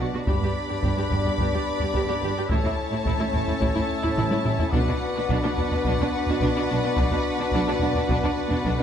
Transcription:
Already playing: B3 D4 F#4 B4 D5 F#5
0.00 F#4
0.13 B2 F#4
0.26 G1 G2 B3 D4 G4 B4 D5 B5, taiko
0.41 G2 G4, taiko low
0.70 G2 G4
0.83 G1 G2 G4, taiko
0.97 G2 G4
1.10 G1 G2 G4, taiko low
1.25 G2 G4, taiko low
1.38 G1 G2 G4, taiko
1.53 G2 G4, taiko low
1.80 G2 G4, taiko low
1.94 G1 G2 G4, taiko
2.07 G2 G4
2.21 G1 G2 G4
2.36 G2 G4
2.49 A1 A2 A3 C#4 E4 A4 C#5 E5 A5, taiko
2.64 A2 E4, taiko low
2.91 A2 E4
3.04 A1 A2 E4, taiko
3.19 A2 E4
3.32 A1 A2 E4, taiko low
3.47 A2 E4, taiko low
3.61 A1 A2 E4, taiko
3.75 A2 E4, taiko low
4.03 A2 E4, taiko low
4.17 A1 A2 E4, taiko mid
4.31 A2 E4, taiko high
4.45 A1 A2 E4, taiko low-mid
4.59 A2 E4, taiko low
4.71 B2 D4 F#4 B4 D5 F#5, taiko
4.75 B1 B3 D4
4.87 B2 D4, taiko low
5.16 B2 D4
5.29 B1 B2 D4, taiko
5.44 B2 D4
5.57 B1 B2 D4, taiko low
5.71 B2 D4, taiko low
5.85 B1 B2 D4, taiko
5.98 B2 D4, taiko low
6.26 B2 D4, taiko low
6.40 B1 B2 D4, taiko
6.57 B2 D4
6.71 B1 B2 D4
6.84 B2 D4
6.96 B1 B2 D4, taiko
7.11 B2 D4, taiko low
7.39 B2 D4
7.51 B1 B2 D4, taiko
7.68 B2 D4
7.80 B1 B2 D4, taiko low
7.95 B2 D4, taiko low
8.08 B1 B2 D4, taiko
8.23 B2 D4, taiko low
8.50 B2 D4, taiko low
8.64 B1 B2 D4, taiko
8.78 B2 D4

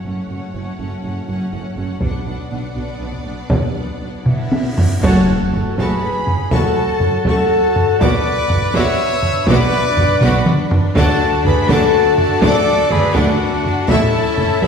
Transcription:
Already playing: A3 C#4 F#4 C#5 F#5
0.05 F#1 F#2 C#4 A4 F#5
0.30 F#1 F#2 C#4 A4 F#5
0.55 F#1 F#2 C#4 A4 F#5
0.79 F#1 F#2 C#4 A4 F#5
1.03 F#1 F#2 C#4 A4 F#5
1.28 F#1 F#2 C#4 A4 F#5
1.52 F#1 F#2 C#4 A4 F#5
1.76 F#1 F#2 C#4 A4 F#5
2.01 B1 B2 F#3 B3 D4 B4 D5 F#5, taiko
2.25 B1 B2 D4 B4 F#5
2.50 B1 B2 D4 B4 F#5
2.75 B1 B2 D4 B4 F#5
3.00 B1 B2 D4 B4 F#5
3.12 taiko
3.24 B1 B2 D4 B4 F#5
3.49 B1 B2 D4 B4 F#5, taiko, cymbal swell
3.74 B1 B2 D4 B4 F#5
4.00 B1 B2 D4 B4 F#5
4.25 B1 B2 B3 D4 E4 B4 E5 F#5, taiko low-mid
4.50 B1 B2 D4 B4 F#5, taiko high
4.76 B1 B2 D4 B4 F#5, taiko low
5.02 F#1 F#2 A3 C#4 F#4 A4 C#5 F#5 A5 C#6, taiko, impact
5.53 F#1 F#2 A3 F#4 A5 C#6, taiko low
5.78 F#1 F#2 A3 F#4 G#4 B4 A5 B5 C#6, taiko
6.28 taiko low
6.51 F#1 F#2 A3 F#4 A4 A5 C#6, taiko
7.00 F#1 F#2 A3 F#4 A5 C#6, taiko low
7.25 F#1 F#2 A3 F#4 A4 A5 C#6, taiko
7.76 taiko low
8.00 B1 B2 B3 D4 F#4 B4 D5 F#5 D6, taiko
8.50 B1 B2 B3 F#4 F#5 D6, taiko low
8.74 B1 B2 B3 F#4 C#5 E5 F#5 D6 E6, taiko
9.23 taiko low
9.47 B1 B2 B3 F#4 B4 D5 F#5 D6, taiko
9.97 B1 B2 B3 F#4 F#5 D6, taiko low
10.21 B1 B2 B3 F#4 B4 F#5 B5 D6, taiko low-mid
10.46 taiko mid
10.71 taiko low
10.95 D2 D3 A3 D4 F#4 A4 D5 F#5 A5 D6, taiko
11.44 D2 D3 A3 D4 G#4 B4 F#5 B5 D6, taiko low
11.68 D2 D3 A3 D4 F#4 A4 F#5 A5 D6, taiko
12.18 F#4 A4 A5, taiko low
12.41 D2 D3 A3 D4 A4 D5 F#5 D6, taiko
12.45 D6
12.90 D2 D3 A3 D4 G#4 B4 F#5 B5 D6, taiko low
13.14 D2 D3 A3 D4 F#4 F#5 D6, taiko
13.64 taiko low
13.86 A1 A2 A3 C#4 E4 A4 E5 A5 C#6, taiko
13.90 A5
14.37 A1 A2 A3 E4, taiko low
14.41 E5 C#6
14.62 A1 A2 A3 E4 G#4 B4 B5, taiko

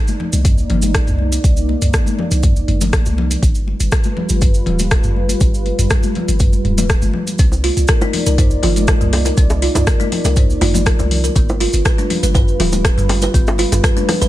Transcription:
Already playing: A#3 D#4 D5
0.08 high conga, cabasa
0.20 muted conga, low conga
0.33 C2, closed hi-hat, high conga, cabasa
0.45 kick, closed hi-hat, mid tom, cabasa
0.58 cabasa
0.70 G1, closed hi-hat, low conga
0.82 closed hi-hat, muted conga, high conga, cabasa
0.94 kick, cross-stick, closed hi-hat, cabasa
1.07 C2, mid tom, muted conga, cabasa
1.18 high conga
1.32 closed hi-hat, muted conga, cabasa
1.44 C2, kick, closed hi-hat, cabasa
1.57 cabasa
1.69 muted conga
1.82 C2, closed hi-hat, mid tom, cabasa
1.94 kick, cross-stick, closed hi-hat, muted conga, cabasa
2.06 high conga, cabasa
2.19 muted conga, low conga
2.31 C2, closed hi-hat, high conga, cabasa
2.43 kick, closed hi-hat, mid tom, muted conga, cabasa
2.56 cabasa
2.68 G1, closed hi-hat, mid tom, high conga
2.81 closed hi-hat, muted conga, high conga, low conga, cabasa
2.93 kick, cross-stick, closed hi-hat, cabasa
3.06 C2, muted conga, high conga, cabasa
3.18 low conga
3.31 closed hi-hat, muted conga, cabasa
3.42 G1 G3 F4 B4, kick, closed hi-hat, cabasa
3.55 cabasa
3.68 muted conga
3.80 G1, closed hi-hat, cabasa
3.92 kick, cross-stick, closed hi-hat, muted conga, cabasa
4.04 high conga, cabasa
4.17 muted conga, low conga
4.29 G1, closed hi-hat, high conga, cabasa
4.41 kick, closed hi-hat, mid tom, muted conga, cabasa
4.54 cabasa
4.66 D1, closed hi-hat, low conga
4.79 closed hi-hat, muted conga, high conga, cabasa
4.91 kick, cross-stick, closed hi-hat, cabasa
5.03 G1, mid tom, muted conga, cabasa
5.16 high conga
5.29 closed hi-hat, muted conga, cabasa
5.40 G1, kick, closed hi-hat, cabasa
5.54 cabasa
5.66 closed hi-hat, muted conga
5.79 G1, closed hi-hat, mid tom, cabasa
5.90 kick, cross-stick, closed hi-hat, muted conga, cabasa
6.03 high conga, cabasa
6.15 closed hi-hat, muted conga, low conga
6.28 G1, closed hi-hat, high conga, cabasa
6.39 kick, closed hi-hat, mid tom, muted conga, cabasa
6.53 high conga, cabasa
6.65 D1, closed hi-hat, mid tom, high conga
6.78 closed hi-hat, muted conga, high conga, low conga, cabasa
6.89 kick, cross-stick, closed hi-hat, cabasa
7.02 G1, muted conga, high conga, cabasa
7.13 low conga
7.27 closed hi-hat, muted conga, cabasa
7.39 C2 A#3 C4 D#4 D5, kick, closed hi-hat, cabasa
7.52 low bongo, cabasa
7.64 F4, open hi-hat, muted conga
7.77 C2, closed hi-hat, cabasa
7.88 A#4, kick, cross-stick, closed hi-hat, muted conga, cabasa
8.01 D#4, low bongo, high conga, cabasa
8.13 open hi-hat, muted conga, low conga
8.26 C2 A#4, closed hi-hat, high conga, cabasa
8.38 C5, kick, closed hi-hat, mid tom, low bongo, muted conga, cabasa
8.50 cabasa
8.63 G1 F4, open hi-hat, high bongo, low conga
8.76 closed hi-hat, muted conga, high conga, cabasa
8.88 A#4, kick, cross-stick, closed hi-hat, low bongo, cabasa
9.01 C2 G3, mid tom, muted conga, cabasa
9.13 open hi-hat, high bongo, high conga
9.25 A#4, closed hi-hat, low bongo, muted conga, cabasa
9.37 C2 C4, kick, closed hi-hat, cabasa
9.50 high bongo, cabasa
9.62 F4, open hi-hat, muted conga
9.75 C2, closed hi-hat, mid tom, high bongo, low bongo, cabasa
9.87 A#4, kick, cross-stick, closed hi-hat, muted conga, cabasa
10.00 D#4, high conga, cabasa
10.12 open hi-hat, low bongo, muted conga, low conga
10.25 C2 A#4, closed hi-hat, high bongo, high conga, cabasa
10.36 C5, kick, closed hi-hat, mid tom, muted conga, cabasa
10.50 cabasa
10.61 G1 F4, mid tom, open hi-hat, low bongo, high conga
10.74 closed hi-hat, muted conga, high conga, low conga, cabasa
10.86 A#4, kick, cross-stick, closed hi-hat, cabasa
10.99 C2 G3, low bongo, muted conga, high conga, cabasa
11.11 open hi-hat, low conga
11.24 A#4, closed hi-hat, muted conga, cabasa
11.36 G1 G3 B3 F4 B4, kick, closed hi-hat, cabasa
11.49 low bongo, cabasa
11.60 F4, open hi-hat, muted conga
11.73 G1, closed hi-hat, cabasa
11.85 B4, kick, cross-stick, closed hi-hat, low bongo, muted conga, cabasa
11.98 D4, high conga, cabasa
12.10 open hi-hat, muted conga, low conga
12.23 G1 B4, closed hi-hat, high conga, cabasa
12.34 B4, kick, closed hi-hat, mid tom, low bongo, muted conga, cabasa
12.48 cabasa
12.60 D1 F4, open hi-hat, high bongo, low conga
12.72 closed hi-hat, low bongo, muted conga, high conga, cabasa
12.84 B4, kick, cross-stick, closed hi-hat, cabasa
12.97 G1 G3, mid tom, muted conga, cabasa
13.09 open hi-hat, high bongo, high conga
13.22 B4, closed hi-hat, low bongo, muted conga, cabasa
13.34 G1 B3, kick, closed hi-hat, cabasa
13.47 high bongo, cabasa
13.58 F4, open hi-hat, low bongo, muted conga
13.72 G1, closed hi-hat, mid tom, high bongo, cabasa
13.84 B4, kick, cross-stick, closed hi-hat, muted conga, cabasa
13.97 D4, high conga, cabasa
14.08 cross-stick, open hi-hat, low bongo, muted conga, low conga
14.21 G1 B4, closed hi-hat, high bongo, high conga, cabasa

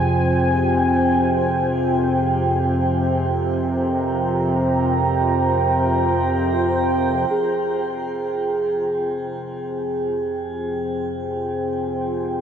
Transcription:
Already playing: F2 C3 F4 G#4 C5 G5 G#5
2.81 A#5
7.30 F2 C3 G#4
8.23 G#5

